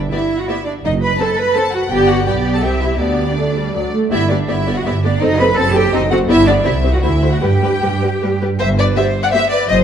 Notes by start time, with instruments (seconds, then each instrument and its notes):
Already playing: cello section D4
0.11 viola section B3 G4, cello section E4, violin section D5 E5
0.38 cello section F#4, violin section F#5
0.47 viola section B3 G4, cello section E4, violin section D5 E5
0.65 cello section D4, violin section D5
0.84 double bass section F#1, cello section D#4, violin section D#5
1.02 cello section B4, violin section B5
1.19 viola section C4 A4, cello section A4, violin section C5 A5
1.38 cello section B4, violin section B5
1.54 viola section C4 A4, cello section A4, violin section C5 A5
1.72 cello section F#4, violin section F#5
1.91 double bass section G1, viola section B3 G4, cello section G4, violin section D5 G5
2.08 cello section F#4, violin section F#5
2.26 double bass section B1, viola section B3 G4, cello section G4, violin section D5 G5
2.53 cello section A4, violin section A5
2.62 double bass section C2, viola section C4 G4, cello section G4, violin section E5 G5
2.81 cello section E4, violin section E5
2.98 double bass section D2, viola section B3 G4, cello section D4, violin section D5
3.36 viola section A3
3.56 viola section G3
3.74 double bass section D2, viola section F#3, violin section D5
3.93 viola section A3
4.11 double bass section G1, viola section B3 G4, cello section E4, violin section D5 E5
4.29 viola section B3 G4, cello section D4, violin section D5
4.47 double bass section G1, viola section B3 G4, cello section E4, violin section D5 E5
4.67 viola section B3 G4, violin section D5
4.75 cello section F#4, violin section F#5
4.84 double bass section G1, viola section B3 G4, cello section E4, violin section D5 E5
5.03 viola section B3 G4, cello section D4, violin section D5
5.21 double bass section F#1, viola section C4 A4, cello section D#4, violin section C5 D#5
5.39 viola section C4 A4, cello section B4, violin section C5 B5
5.57 double bass section F#1, viola section C4 A4, cello section A4, violin section C5 A5
5.75 viola section C4 A4, cello section G4, violin section C5 G5
5.92 double bass section F#1, viola section C4 A4, cello section D#4, violin section C5 D#5
6.11 viola section C4 A4, cello section F#4, violin section C5 F#5
6.29 double bass section G1, viola section B3 G4, cello section E4, violin section D5 E5
6.46 viola section B3 G4, cello section D4, violin section D5
6.64 double bass section C2, viola section C4 G4, cello section E4, violin section C5 E5
6.83 viola section C4 G4, violin section C5
6.93 cello section F#4, violin section F#5
7.02 double bass section D2, viola section A3 F#4, cello section E4, violin section C5 E5
7.22 viola section A3 F#4, violin section C5
7.32 cello section F#4, violin section F#5
7.41 double bass section G2, viola section G3 G4, cello section G4, violin section B4 G5
7.62 viola section G3 G4, violin section B4
7.82 double bass section G2, viola section G3 G4, violin section B4
8.02 viola section G3 G4, violin section B4
8.22 double bass section G2, viola section G3 G4, violin section B4
8.41 viola section G3 G4, violin section B4
8.59 double bass section G1, cello section G2, violin section C5 E5
8.78 violin section B4 D5
8.96 viola section B3 G4, violin section C5 E5
9.23 violin section D5 F#5
9.32 viola section B3 G4, violin section C5 E5
9.50 violin section B4 D5
9.69 double bass section F#1, cello section F#2, violin section C5 D#5